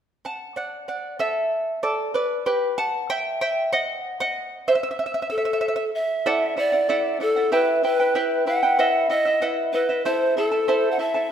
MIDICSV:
0, 0, Header, 1, 3, 480
1, 0, Start_track
1, 0, Tempo, 632911
1, 906, Time_signature, 2, 2, 24, 8
1, 8581, End_track
2, 0, Start_track
2, 0, Title_t, "Charango"
2, 0, Program_c, 0, 24
2, 189, Note_on_c, 0, 78, 62
2, 196, Note_on_c, 0, 81, 68
2, 411, Note_off_c, 0, 78, 0
2, 426, Note_on_c, 0, 74, 62
2, 429, Note_off_c, 0, 81, 0
2, 432, Note_on_c, 0, 78, 68
2, 650, Note_off_c, 0, 74, 0
2, 661, Note_off_c, 0, 78, 0
2, 669, Note_on_c, 0, 74, 55
2, 672, Note_on_c, 0, 78, 57
2, 891, Note_off_c, 0, 74, 0
2, 905, Note_on_c, 0, 69, 58
2, 908, Note_off_c, 0, 78, 0
2, 911, Note_on_c, 0, 76, 63
2, 1356, Note_off_c, 0, 69, 0
2, 1357, Note_off_c, 0, 76, 0
2, 1388, Note_on_c, 0, 74, 62
2, 1392, Note_on_c, 0, 69, 50
2, 1612, Note_off_c, 0, 69, 0
2, 1620, Note_off_c, 0, 74, 0
2, 1626, Note_on_c, 0, 71, 50
2, 1634, Note_on_c, 0, 74, 55
2, 1850, Note_off_c, 0, 71, 0
2, 1866, Note_on_c, 0, 67, 54
2, 1868, Note_on_c, 0, 71, 61
2, 1875, Note_off_c, 0, 74, 0
2, 2090, Note_off_c, 0, 67, 0
2, 2107, Note_on_c, 0, 81, 72
2, 2111, Note_on_c, 0, 78, 55
2, 2113, Note_off_c, 0, 71, 0
2, 2332, Note_off_c, 0, 78, 0
2, 2350, Note_on_c, 0, 79, 74
2, 2353, Note_on_c, 0, 76, 56
2, 2354, Note_off_c, 0, 81, 0
2, 2573, Note_off_c, 0, 76, 0
2, 2580, Note_off_c, 0, 79, 0
2, 2589, Note_on_c, 0, 79, 70
2, 2594, Note_on_c, 0, 76, 56
2, 2814, Note_off_c, 0, 76, 0
2, 2823, Note_off_c, 0, 79, 0
2, 2826, Note_on_c, 0, 78, 75
2, 2831, Note_on_c, 0, 75, 62
2, 3164, Note_off_c, 0, 75, 0
2, 3180, Note_off_c, 0, 78, 0
2, 3188, Note_on_c, 0, 78, 78
2, 3196, Note_on_c, 0, 75, 52
2, 3525, Note_off_c, 0, 75, 0
2, 3548, Note_on_c, 0, 76, 64
2, 3551, Note_on_c, 0, 72, 51
2, 3559, Note_off_c, 0, 78, 0
2, 3595, Note_off_c, 0, 76, 0
2, 3604, Note_off_c, 0, 72, 0
2, 3604, Note_on_c, 0, 76, 48
2, 3657, Note_off_c, 0, 76, 0
2, 3666, Note_on_c, 0, 76, 50
2, 3714, Note_off_c, 0, 76, 0
2, 3723, Note_on_c, 0, 76, 45
2, 3775, Note_off_c, 0, 76, 0
2, 3784, Note_on_c, 0, 76, 46
2, 3829, Note_off_c, 0, 76, 0
2, 3838, Note_on_c, 0, 76, 42
2, 3890, Note_off_c, 0, 76, 0
2, 3899, Note_on_c, 0, 76, 47
2, 3951, Note_off_c, 0, 76, 0
2, 3960, Note_on_c, 0, 76, 41
2, 4008, Note_off_c, 0, 76, 0
2, 4017, Note_on_c, 0, 76, 45
2, 4068, Note_off_c, 0, 76, 0
2, 4078, Note_on_c, 0, 76, 41
2, 4126, Note_off_c, 0, 76, 0
2, 4135, Note_on_c, 0, 76, 47
2, 4186, Note_off_c, 0, 76, 0
2, 4195, Note_on_c, 0, 76, 46
2, 4245, Note_off_c, 0, 76, 0
2, 4254, Note_on_c, 0, 76, 50
2, 4301, Note_off_c, 0, 76, 0
2, 4310, Note_on_c, 0, 76, 45
2, 4358, Note_off_c, 0, 76, 0
2, 4367, Note_on_c, 0, 76, 50
2, 4423, Note_off_c, 0, 76, 0
2, 4747, Note_on_c, 0, 69, 62
2, 4748, Note_on_c, 0, 76, 64
2, 4749, Note_on_c, 0, 64, 67
2, 4752, Note_on_c, 0, 74, 73
2, 4752, Note_on_c, 0, 78, 76
2, 4970, Note_off_c, 0, 76, 0
2, 4976, Note_off_c, 0, 64, 0
2, 4977, Note_off_c, 0, 74, 0
2, 4979, Note_on_c, 0, 76, 47
2, 4981, Note_off_c, 0, 78, 0
2, 4983, Note_off_c, 0, 69, 0
2, 4985, Note_on_c, 0, 64, 53
2, 4986, Note_on_c, 0, 74, 54
2, 4990, Note_on_c, 0, 78, 58
2, 5089, Note_off_c, 0, 78, 0
2, 5095, Note_off_c, 0, 74, 0
2, 5098, Note_on_c, 0, 78, 44
2, 5101, Note_off_c, 0, 64, 0
2, 5103, Note_off_c, 0, 76, 0
2, 5104, Note_on_c, 0, 74, 43
2, 5110, Note_on_c, 0, 64, 37
2, 5221, Note_off_c, 0, 64, 0
2, 5221, Note_off_c, 0, 74, 0
2, 5222, Note_off_c, 0, 78, 0
2, 5224, Note_on_c, 0, 69, 60
2, 5227, Note_on_c, 0, 76, 67
2, 5230, Note_on_c, 0, 64, 66
2, 5231, Note_on_c, 0, 74, 69
2, 5232, Note_on_c, 0, 78, 69
2, 5452, Note_off_c, 0, 76, 0
2, 5454, Note_off_c, 0, 64, 0
2, 5459, Note_off_c, 0, 74, 0
2, 5460, Note_off_c, 0, 78, 0
2, 5461, Note_on_c, 0, 76, 45
2, 5463, Note_on_c, 0, 64, 50
2, 5465, Note_off_c, 0, 69, 0
2, 5468, Note_on_c, 0, 74, 57
2, 5469, Note_on_c, 0, 78, 56
2, 5573, Note_off_c, 0, 78, 0
2, 5578, Note_off_c, 0, 74, 0
2, 5581, Note_off_c, 0, 64, 0
2, 5582, Note_on_c, 0, 78, 45
2, 5583, Note_off_c, 0, 76, 0
2, 5587, Note_on_c, 0, 74, 40
2, 5590, Note_on_c, 0, 64, 36
2, 5696, Note_off_c, 0, 64, 0
2, 5701, Note_on_c, 0, 67, 64
2, 5704, Note_off_c, 0, 74, 0
2, 5704, Note_off_c, 0, 78, 0
2, 5704, Note_on_c, 0, 76, 69
2, 5706, Note_on_c, 0, 64, 80
2, 5707, Note_on_c, 0, 71, 73
2, 5707, Note_on_c, 0, 79, 80
2, 5932, Note_off_c, 0, 76, 0
2, 5936, Note_off_c, 0, 64, 0
2, 5938, Note_off_c, 0, 79, 0
2, 5939, Note_off_c, 0, 71, 0
2, 5941, Note_on_c, 0, 76, 53
2, 5943, Note_off_c, 0, 67, 0
2, 5945, Note_on_c, 0, 64, 57
2, 5948, Note_on_c, 0, 71, 54
2, 5950, Note_on_c, 0, 79, 54
2, 6054, Note_off_c, 0, 79, 0
2, 6061, Note_off_c, 0, 71, 0
2, 6063, Note_off_c, 0, 76, 0
2, 6063, Note_on_c, 0, 79, 49
2, 6065, Note_off_c, 0, 64, 0
2, 6070, Note_on_c, 0, 71, 42
2, 6075, Note_on_c, 0, 64, 40
2, 6174, Note_off_c, 0, 64, 0
2, 6177, Note_off_c, 0, 71, 0
2, 6180, Note_off_c, 0, 79, 0
2, 6181, Note_on_c, 0, 76, 67
2, 6182, Note_on_c, 0, 67, 65
2, 6183, Note_on_c, 0, 64, 67
2, 6186, Note_on_c, 0, 71, 76
2, 6189, Note_on_c, 0, 79, 70
2, 6409, Note_off_c, 0, 76, 0
2, 6414, Note_off_c, 0, 64, 0
2, 6417, Note_off_c, 0, 71, 0
2, 6419, Note_off_c, 0, 79, 0
2, 6419, Note_on_c, 0, 76, 51
2, 6423, Note_off_c, 0, 67, 0
2, 6423, Note_on_c, 0, 64, 57
2, 6427, Note_on_c, 0, 71, 57
2, 6428, Note_on_c, 0, 79, 53
2, 6533, Note_off_c, 0, 79, 0
2, 6541, Note_off_c, 0, 76, 0
2, 6542, Note_off_c, 0, 71, 0
2, 6542, Note_on_c, 0, 79, 46
2, 6543, Note_off_c, 0, 64, 0
2, 6551, Note_on_c, 0, 71, 46
2, 6555, Note_on_c, 0, 64, 41
2, 6654, Note_off_c, 0, 71, 0
2, 6658, Note_off_c, 0, 64, 0
2, 6663, Note_off_c, 0, 79, 0
2, 6664, Note_on_c, 0, 71, 66
2, 6666, Note_on_c, 0, 78, 68
2, 6667, Note_on_c, 0, 64, 79
2, 6670, Note_on_c, 0, 75, 76
2, 6672, Note_on_c, 0, 76, 76
2, 6889, Note_off_c, 0, 78, 0
2, 6891, Note_off_c, 0, 64, 0
2, 6897, Note_off_c, 0, 75, 0
2, 6898, Note_on_c, 0, 78, 53
2, 6899, Note_off_c, 0, 76, 0
2, 6900, Note_on_c, 0, 64, 57
2, 6903, Note_off_c, 0, 71, 0
2, 6906, Note_on_c, 0, 75, 56
2, 6908, Note_on_c, 0, 76, 56
2, 7008, Note_off_c, 0, 76, 0
2, 7015, Note_off_c, 0, 75, 0
2, 7017, Note_on_c, 0, 76, 49
2, 7021, Note_off_c, 0, 64, 0
2, 7021, Note_off_c, 0, 78, 0
2, 7024, Note_on_c, 0, 75, 45
2, 7029, Note_on_c, 0, 64, 38
2, 7134, Note_off_c, 0, 64, 0
2, 7138, Note_off_c, 0, 75, 0
2, 7140, Note_off_c, 0, 76, 0
2, 7141, Note_on_c, 0, 71, 62
2, 7142, Note_on_c, 0, 78, 72
2, 7143, Note_on_c, 0, 64, 67
2, 7147, Note_on_c, 0, 75, 72
2, 7149, Note_on_c, 0, 76, 68
2, 7376, Note_off_c, 0, 78, 0
2, 7379, Note_off_c, 0, 64, 0
2, 7382, Note_off_c, 0, 71, 0
2, 7383, Note_off_c, 0, 75, 0
2, 7385, Note_on_c, 0, 78, 50
2, 7386, Note_off_c, 0, 76, 0
2, 7388, Note_on_c, 0, 64, 56
2, 7392, Note_on_c, 0, 75, 54
2, 7395, Note_on_c, 0, 76, 60
2, 7491, Note_off_c, 0, 76, 0
2, 7497, Note_off_c, 0, 75, 0
2, 7500, Note_on_c, 0, 76, 46
2, 7503, Note_off_c, 0, 64, 0
2, 7504, Note_off_c, 0, 78, 0
2, 7506, Note_on_c, 0, 75, 48
2, 7512, Note_on_c, 0, 64, 40
2, 7616, Note_off_c, 0, 76, 0
2, 7619, Note_off_c, 0, 64, 0
2, 7624, Note_off_c, 0, 75, 0
2, 7625, Note_on_c, 0, 72, 68
2, 7625, Note_on_c, 0, 76, 70
2, 7628, Note_on_c, 0, 64, 79
2, 7629, Note_on_c, 0, 69, 70
2, 7629, Note_on_c, 0, 81, 76
2, 7854, Note_off_c, 0, 76, 0
2, 7858, Note_off_c, 0, 64, 0
2, 7862, Note_off_c, 0, 69, 0
2, 7863, Note_off_c, 0, 72, 0
2, 7863, Note_on_c, 0, 76, 51
2, 7865, Note_off_c, 0, 81, 0
2, 7867, Note_on_c, 0, 64, 51
2, 7872, Note_on_c, 0, 69, 57
2, 7874, Note_on_c, 0, 81, 63
2, 7966, Note_off_c, 0, 81, 0
2, 7973, Note_off_c, 0, 69, 0
2, 7975, Note_on_c, 0, 81, 47
2, 7977, Note_off_c, 0, 64, 0
2, 7982, Note_off_c, 0, 76, 0
2, 7982, Note_on_c, 0, 69, 45
2, 7986, Note_on_c, 0, 64, 40
2, 8095, Note_off_c, 0, 64, 0
2, 8096, Note_off_c, 0, 69, 0
2, 8098, Note_off_c, 0, 81, 0
2, 8099, Note_on_c, 0, 72, 68
2, 8101, Note_on_c, 0, 76, 68
2, 8104, Note_on_c, 0, 64, 68
2, 8105, Note_on_c, 0, 69, 70
2, 8106, Note_on_c, 0, 81, 69
2, 8325, Note_off_c, 0, 76, 0
2, 8328, Note_off_c, 0, 64, 0
2, 8331, Note_off_c, 0, 69, 0
2, 8333, Note_off_c, 0, 81, 0
2, 8334, Note_on_c, 0, 76, 52
2, 8337, Note_on_c, 0, 64, 52
2, 8340, Note_off_c, 0, 72, 0
2, 8340, Note_on_c, 0, 69, 53
2, 8342, Note_on_c, 0, 81, 47
2, 8442, Note_off_c, 0, 81, 0
2, 8447, Note_off_c, 0, 69, 0
2, 8451, Note_on_c, 0, 81, 44
2, 8454, Note_off_c, 0, 64, 0
2, 8456, Note_on_c, 0, 69, 41
2, 8457, Note_off_c, 0, 76, 0
2, 8463, Note_on_c, 0, 64, 38
2, 8563, Note_off_c, 0, 69, 0
2, 8569, Note_off_c, 0, 64, 0
2, 8572, Note_off_c, 0, 81, 0
2, 8581, End_track
3, 0, Start_track
3, 0, Title_t, "Pan flute"
3, 0, Program_c, 1, 75
3, 4027, Note_on_c, 1, 69, 86
3, 4476, Note_off_c, 1, 69, 0
3, 4512, Note_on_c, 1, 76, 87
3, 4958, Note_off_c, 1, 76, 0
3, 4998, Note_on_c, 1, 74, 97
3, 5441, Note_off_c, 1, 74, 0
3, 5478, Note_on_c, 1, 69, 81
3, 5712, Note_on_c, 1, 71, 85
3, 5723, Note_off_c, 1, 69, 0
3, 5948, Note_off_c, 1, 71, 0
3, 5959, Note_on_c, 1, 71, 93
3, 6401, Note_off_c, 1, 71, 0
3, 6433, Note_on_c, 1, 78, 94
3, 6877, Note_off_c, 1, 78, 0
3, 6905, Note_on_c, 1, 75, 90
3, 7154, Note_off_c, 1, 75, 0
3, 7379, Note_on_c, 1, 71, 80
3, 7604, Note_off_c, 1, 71, 0
3, 7625, Note_on_c, 1, 72, 90
3, 7847, Note_off_c, 1, 72, 0
3, 7868, Note_on_c, 1, 69, 89
3, 8276, Note_on_c, 1, 78, 61
3, 8287, Note_off_c, 1, 69, 0
3, 8345, Note_on_c, 1, 76, 89
3, 8356, Note_off_c, 1, 78, 0
3, 8581, Note_off_c, 1, 76, 0
3, 8581, End_track
0, 0, End_of_file